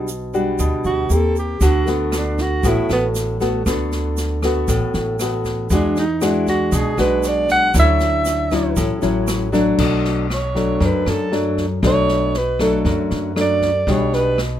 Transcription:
Already playing: B1 B2
0.08 shaker
0.34 G3 D4 F#4, shaker
0.59 D2 B2, shaker
0.84 D2 F#4, shaker
1.10 D#2 A#3 C4 G4 A4, shaker
1.36 G4, shaker
1.61 D2 D3 A3 B3 F#4, kick, snare, shaker
1.87 A3 B3 F#4, snare, shaker
2.12 cross-stick, snare, shaker
2.17 D4
2.38 F#4, kick, snare, shaker
2.63 A1 A2 A3 B3 F#4, kick, snare, shaker
2.68 E4
2.89 A1 B3, cross-stick, snare, shaker
3.15 snare, shaker
3.40 A3 B3 F#4, kick, snare, shaker
3.66 D2 D3 A3 B3 F#4, kick, cross-stick, snare, shaker
3.92 snare, shaker
4.17 snare, shaker
4.42 A3 B3 F#4, kick, cross-stick, snare, shaker
4.68 A1 A2, kick, snare, shaker
4.93 A1, snare, shaker
5.19 A3 B3 F#4, cross-stick, snare, shaker
5.45 kick, snare, shaker
5.70 E2 E3 G#3 D4 F#4, kick, snare, shaker
5.74 D4
5.96 D#4, snare, shaker
6.21 G#3 D4 F#4, cross-stick, snare, shaker
6.25 E4
6.47 F#4, kick, snare, shaker
6.72 B1 B2 G#4, kick, snare, shaker
6.98 B1 G#3 D4 F#4 B4, cross-stick, snare, shaker
7.23 snare, shaker
7.27 D5
7.48 F#5, kick, snare, shaker
7.74 D2 D3 F#3 C#4 E4, kick, cross-stick, snare, shaker
7.79 E5
8.00 snare, shaker
8.25 snare, shaker
8.51 F#3 C#4 E4, kick, cross-stick, snare, shaker
8.76 A1 A2, kick, snare, shaker
9.02 A1 F#3 C#4 E4, snare, shaker
9.28 cross-stick, snare, shaker
9.52 F#3 A3 D4, kick, snare, shaker
9.79 B1 B2, kick, snare, crash
10.05 snare
10.30 C#5, cross-stick, snare
10.55 F#3 A3 D4, kick, snare
10.80 F#2, kick, snare
10.85 B4
11.06 F#2 A4, cross-stick, snare
11.32 F#3 A3 D4, snare
11.57 kick, snare
11.83 B1 B2 F#3 A3 D4, kick, cross-stick, snare
11.87 C#5
12.08 snare
12.34 B4, snare
12.59 F#3 A3 D4 A4, kick, cross-stick, snare
12.85 F#2, kick, snare
13.10 F#2, snare
13.36 F#3 A3 D4, cross-stick, snare
13.41 D5
13.61 kick, snare
13.87 B1 B2 G3 D4 F#4, kick, snare
13.91 C#5
14.13 B4, snare
14.38 cross-stick, snare

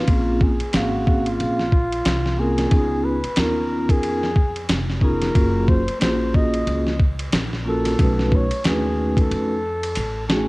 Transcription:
Already playing: F4
0.07 A#1 A#3 C4 C#4 F4 G#4, kick, ride
0.41 G#4, kick
0.60 muted upright bass stroke, ride
0.73 G#1 A#3 C4 C#4 F#4 G#4 F5, snare, hi-hat pedal, ride
1.07 kick
1.26 F4, ride
1.40 A#1, ride
1.59 snare
1.72 kick
1.92 ride
2.05 C2, snare, hi-hat pedal, ride
2.26 snare
2.37 A#3 C4 C#4 F4 G#4 A#4
2.58 snare, ride
2.70 C#2 B3 C#4 D#4 F4, kick, ride
2.74 G#4
3.05 B4
3.24 muted upright bass stroke, ride
3.36 D#2 B3 C#4 D#4 F4 A#4, snare, hi-hat pedal, ride
3.40 A#4
3.89 G#4, kick, ride
4.03 F2, ride
4.23 snare
4.36 kick
4.56 ride
4.69 F1, snare, hi-hat pedal, ride
4.90 snare
5.00 B3 C#4 D#4 F4 G#4 A#4, kick
5.22 snare, ride
5.33 F#1 A#3 C#4 F4 F#4 G#4, kick, ride
5.68 C5, kick
5.88 muted upright bass stroke, ride
5.99 A#1 A#3 C#4 F4 F#4 G#4 C5, snare, hi-hat pedal, ride
6.34 D#5, kick
6.54 ride
6.67 C#2, ride
6.87 snare
6.99 kick
7.19 ride
7.32 A#1, snare, hi-hat pedal, ride
7.53 snare
7.64 A#3 C#4 F4 F#4 A4 A#4
7.85 snare, ride
7.98 B1 A3 C#4 D#4 F#4 B4, kick, ride
8.19 snare
8.32 C#5, kick
8.51 muted upright bass stroke, ride
8.64 D#2 A3 C#4 D4 F#4 G#4 B4, snare, hi-hat pedal, ride
8.72 D#4
9.17 A4, kick, ride
9.31 F2, ride
9.83 ride
9.95 A1, hi-hat pedal, ride
10.27 A3 C#4 D#4 A4, snare
10.31 F#4 G#4

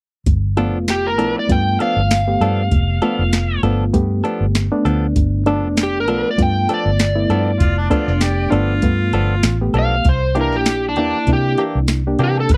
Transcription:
0.26 G1, kick, closed hi-hat
0.57 F3 A3 B3 D4 F4 A4, closed hi-hat
0.75 F1
0.88 G4, snare, closed hi-hat, tambourine
1.07 A#4
1.18 B1 F3 A3 B3 D4 E4 A4, closed hi-hat
1.39 D5
1.49 G2 A3 B3 F4 G5, kick, closed hi-hat
1.80 F3 B3 D4 A4 F5, closed hi-hat
1.96 G1
2.11 snare, closed hi-hat, tambourine
2.27 A3 B3 G4
2.41 G2 F3 B3 D4 A4, closed hi-hat
2.71 F1, kick, closed hi-hat
3.02 F3 A3 B3 D4 F4 A4, closed hi-hat
3.19 F1
3.33 snare, closed hi-hat, tambourine
3.63 G1 F3 A3 B3 D4 F4 A4, closed hi-hat
3.93 G2 A3 B3 G4, kick, closed hi-hat
4.24 F3 B3 D4 A4, closed hi-hat
4.41 G1
4.55 snare, closed hi-hat, tambourine
4.72 A3 B3 D4
4.85 D2 F3 B3 D4 A4, closed hi-hat
5.16 G1, kick, closed hi-hat
5.46 F3 A3 B3 D4 A4, closed hi-hat
5.64 F1
5.77 snare, closed hi-hat, tambourine
5.83 G4
6.00 A#4
6.07 B1 F3 A3 B3 D4 F4 A4, closed hi-hat
6.31 D5
6.38 G2 A3 B3 F4, kick, closed hi-hat
6.42 G5
6.69 F3 B3 D4 A4, closed hi-hat
6.74 D5
6.86 G1
6.99 snare, closed hi-hat, tambourine
7.15 A3 B3 E4
7.30 G2 F3 B3 D4 A4, closed hi-hat
7.60 F1 F4, kick, closed hi-hat
7.78 D4
7.90 F3 A3 B3 D4 F4 A4, kick, closed hi-hat
8.08 F1, snare
8.21 G4, snare, closed hi-hat, tambourine
8.51 G1 F3 A3 B3 D4 F4 A4, closed hi-hat
8.82 G2 A3 B3 F4, kick, closed hi-hat
9.13 G1 F3 B3 D4 A4, closed hi-hat
9.43 A1, snare, closed hi-hat, tambourine
9.61 A3 B3 G4
9.74 B1 F3 B3 D4 A4, closed hi-hat
9.79 F5
10.05 C2, kick, closed hi-hat
10.09 C5
10.35 E3 A#3 D4 E4 G4, closed hi-hat
10.41 A#4
10.52 A#1 G4, snare
10.66 snare, closed hi-hat, tambourine
10.89 D4
10.96 E2 E3 A#3 D4 E4 G4, closed hi-hat
11.27 C3 A#3 D4 E4, kick, closed hi-hat
11.33 G4
11.58 E3 A#3 D4 G4, closed hi-hat
11.75 C2
11.88 snare, closed hi-hat, tambourine
12.07 A#3 D4 G4
12.19 C3 E3 A#3 D4 G4, closed hi-hat
12.24 G4
12.40 A4
12.49 G1, kick, closed hi-hat

